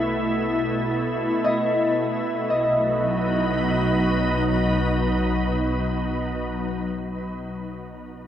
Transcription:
0.00 2.46 B1 medium
0.00 2.49 B2 medium
0.00 2.50 A3 medium
0.00 2.50 E4 medium
0.00 2.50 B4 medium
1.44 2.50 D#5 medium
2.50 4.86 B1 medium
2.50 6.46 B2 medium
2.50 7.05 D#5 soft
2.62 6.46 F#3 medium
2.74 6.46 D#4 medium
2.86 6.46 B4 medium

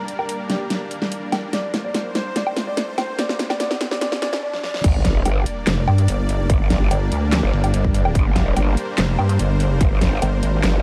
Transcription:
0.00 4.39 G3 medium
0.00 4.39 A#3 medium
0.00 4.39 D4 medium
0.00 4.39 A#4 medium
0.00 1.50 D5 medium
0.00 riser medium
0.08 closed hi-hat medium
0.19 0.35 A#4 medium
0.19 low woodblock medium
0.29 closed hi-hat medium
0.49 0.71 G4 medium
0.49 snare medium
0.49 closed hi-hat medium
0.70 snare medium
0.70 closed hi-hat medium
0.91 closed hi-hat medium
1.02 snare medium
1.12 closed hi-hat medium
1.32 snare medium
1.32 closed hi-hat medium
1.32 low woodblock medium
1.53 4.40 C5 medium
1.53 1.70 D5 medium
1.53 snare medium
1.53 closed hi-hat medium
1.74 snare medium
1.74 closed hi-hat soft
1.84 2.01 D5 medium
1.94 snare medium
1.94 closed hi-hat medium
2.15 2.34 C5 medium
2.15 snare medium
2.15 closed hi-hat medium
2.36 2.52 D5 medium
2.36 snare medium
2.36 closed hi-hat medium
2.47 low woodblock medium
2.56 snare medium
2.56 closed hi-hat medium
2.67 2.83 D5 medium
2.77 snare medium
2.77 closed hi-hat medium
2.98 3.17 C5 medium
2.98 snare medium
2.98 closed hi-hat medium
2.98 low woodblock medium
3.18 3.35 D5 medium
3.18 snare medium
3.18 closed hi-hat medium
3.29 snare medium
3.39 snare medium
3.39 closed hi-hat soft
3.50 3.58 D5 medium
3.50 snare medium
3.50 low woodblock medium
3.60 3.76 D5 loud
3.60 snare loud
3.60 closed hi-hat medium
3.71 snare medium
3.81 snare loud
3.81 closed hi-hat medium
3.91 4.00 D5 loud
3.91 snare medium
4.01 4.18 D5 loud
4.01 snare loud
4.01 closed hi-hat medium
4.12 snare medium
4.22 4.39 D5 loud
4.22 snare loud
4.22 closed hi-hat medium
4.33 snare medium
4.43 4.59 D5 loud
4.53 snare medium
4.63 4.80 D5 loud
4.63 snare medium
4.74 snare medium
4.84 5.24 G1 loud
4.84 10.82 G3 medium
4.84 10.82 A#3 medium
4.84 10.82 D4 medium
4.84 10.82 A#4 medium
4.84 8.12 D5 loud
4.84 kick loud
4.84 closed hi-hat medium
4.84 crash loud
4.84 sub drop medium
5.05 kick medium
5.05 snare medium
5.05 closed hi-hat medium
5.25 5.45 G1 loud
5.25 closed hi-hat medium
5.25 low woodblock medium
5.46 closed hi-hat medium
5.67 5.86 F1 loud
5.67 snare loud
5.67 clap medium
5.67 closed hi-hat medium
5.88 6.07 G2 loud
5.88 low woodblock medium
5.98 closed hi-hat medium
6.08 6.48 G1 loud
6.08 closed hi-hat medium
6.29 closed hi-hat medium
6.50 6.89 G1 medium
6.50 kick loud
6.50 closed hi-hat medium
6.70 kick medium
6.70 snare medium
6.70 closed hi-hat medium
6.91 7.10 G1 loud
6.91 closed hi-hat medium
6.91 low woodblock medium
7.12 7.41 D2 loud
7.12 closed hi-hat medium
7.32 snare loud
7.32 clap medium
7.32 closed hi-hat medium
7.43 7.51 G1 medium
7.53 7.72 G1 medium
7.64 closed hi-hat medium
7.64 low woodblock medium
7.74 8.14 G1 loud
7.74 closed hi-hat medium
7.84 kick medium
7.94 closed hi-hat medium
8.05 low woodblock medium
8.15 8.55 G1 loud
8.15 10.82 C5 medium
8.15 kick loud
8.15 closed hi-hat medium
8.36 kick medium
8.36 snare medium
8.36 closed hi-hat soft
8.56 8.76 G1 loud
8.56 closed hi-hat medium
8.56 low woodblock medium
8.77 closed hi-hat medium
8.98 9.17 F1 loud
8.98 snare loud
8.98 clap medium
8.98 closed hi-hat medium
9.19 9.38 G2 loud
9.19 low woodblock medium
9.29 closed hi-hat medium
9.39 9.79 G1 loud
9.39 closed hi-hat medium
9.60 closed hi-hat medium
9.81 10.20 G1 loud
9.81 kick loud
9.81 closed hi-hat medium
10.01 kick medium
10.01 snare medium
10.01 closed hi-hat soft
10.22 10.41 G1 loud
10.22 closed hi-hat medium
10.22 low woodblock medium
10.43 10.62 G#1 loud
10.43 closed hi-hat medium
10.63 10.82 G1 loud
10.63 snare loud
10.63 clap medium
10.63 closed hi-hat medium

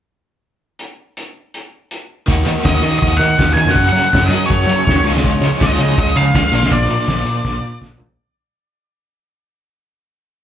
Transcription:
0.79 closed hi-hat soft
1.17 closed hi-hat soft
1.54 closed hi-hat soft
1.91 closed hi-hat soft
2.26 2.42 D#2 medium
2.26 2.81 D#3 medium
2.26 2.85 A#3 medium
2.26 2.83 D#4 medium
2.26 kick medium
2.30 2.82 F#4 medium
2.46 2.53 D#3 medium
2.46 closed hi-hat medium
2.65 2.79 D#2 medium
2.65 2.98 D#5 medium
2.65 kick medium
2.65 snare medium
2.82 2.97 D#3 medium
2.82 3.75 A#3 medium
2.82 3.75 D#4 medium
2.82 3.74 F#4 medium
2.82 closed hi-hat medium
2.86 3.76 D#3 medium
2.99 3.17 D#2 medium
2.99 3.17 D#5 medium
2.99 kick medium
3.17 3.34 D#3 medium
3.17 3.53 F#5 medium
3.21 closed hi-hat medium
3.39 3.53 D#2 medium
3.39 kick medium
3.39 snare medium
3.53 3.64 D#3 medium
3.53 3.71 G#5 medium
3.53 closed hi-hat medium
3.65 3.73 F2 medium
3.65 snare medium
3.71 3.88 F#5 medium
3.75 4.30 F#2 medium
3.75 3.90 F#2 medium
3.75 4.30 C#3 medium
3.75 4.31 F#3 medium
3.75 4.31 A#3 medium
3.75 4.30 C#4 medium
3.75 kick loud
3.79 4.29 F#4 medium
3.89 4.00 F#3 medium
3.89 4.30 F#5 medium
3.96 closed hi-hat medium
4.13 4.28 F#2 medium
4.13 kick medium
4.13 snare medium
4.26 4.44 F#3 medium
4.26 4.46 D#5 medium
4.30 5.05 F#2 medium
4.30 5.02 C#3 medium
4.30 5.04 F#3 medium
4.30 5.04 A#3 medium
4.30 5.04 C#4 medium
4.30 5.03 F#4 medium
4.30 closed hi-hat medium
4.46 5.03 C#5 medium
4.50 4.64 F#2 medium
4.50 kick loud
4.67 4.82 F#3 medium
4.67 closed hi-hat medium
4.87 5.01 D#2 medium
4.87 kick medium
4.87 snare medium
5.03 5.11 C#2 medium
5.03 5.58 C#3 medium
5.03 5.60 F3 medium
5.03 5.59 G#3 medium
5.03 5.60 C#4 medium
5.07 5.62 F4 medium
5.07 closed hi-hat medium
5.14 5.21 C#2 medium
5.14 snare medium
5.24 5.38 C#2 medium
5.24 kick medium
5.41 5.49 C#3 medium
5.41 closed hi-hat medium
5.59 5.75 C#2 medium
5.59 6.51 C#3 medium
5.59 6.53 F3 medium
5.59 6.52 G#3 medium
5.59 6.52 C#4 medium
5.59 6.55 F4 medium
5.59 5.98 D#5 medium
5.59 kick loud
5.59 snare loud
5.78 5.93 C#3 medium
5.78 closed hi-hat medium
5.97 6.12 C#2 medium
5.97 6.17 D#5 medium
5.97 kick medium
6.16 6.30 C#3 medium
6.16 6.35 F5 medium
6.16 closed hi-hat medium
6.34 6.49 C#2 medium
6.34 6.72 F5 medium
6.34 kick medium
6.34 snare loud
6.52 6.60 A#1 medium
6.52 7.05 A#2 medium
6.52 7.06 F3 medium
6.52 7.07 A#3 medium
6.52 7.08 D4 loud
6.52 7.08 F4 medium
6.52 closed hi-hat medium
6.61 6.69 A#1 medium
6.61 snare medium
6.71 6.86 A#1 medium
6.71 7.79 D5 medium
6.71 kick medium
6.88 6.96 A#2 medium
6.88 closed hi-hat medium
7.06 7.23 A#1 medium
7.06 7.98 A#2 medium
7.06 7.99 F3 medium
7.06 7.99 A#3 medium
7.06 8.00 D4 medium
7.06 kick medium
7.06 snare medium
7.10 8.00 F4 medium
7.25 7.40 A#2 medium
7.25 closed hi-hat medium
7.45 7.59 A#1 medium
7.45 kick medium
7.45 snare soft
7.61 7.77 A#2 medium
7.81 7.96 A#1 medium
7.81 kick medium
7.81 snare medium
7.98 8.06 A#2 medium
7.98 floor tom medium
8.08 8.16 A#1 medium

